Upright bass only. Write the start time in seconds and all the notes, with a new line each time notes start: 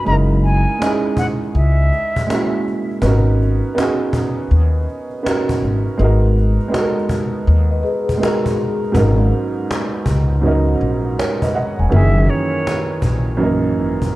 0.06 F#1
1.55 C#2
3.02 G#1
4.51 D#2
5.62 G#1
5.99 G#1
7.47 D#2
8.95 G#1
10.06 C#2
10.81 A#1
11.79 E1
11.92 F#1
13.02 A#1
13.77 G#1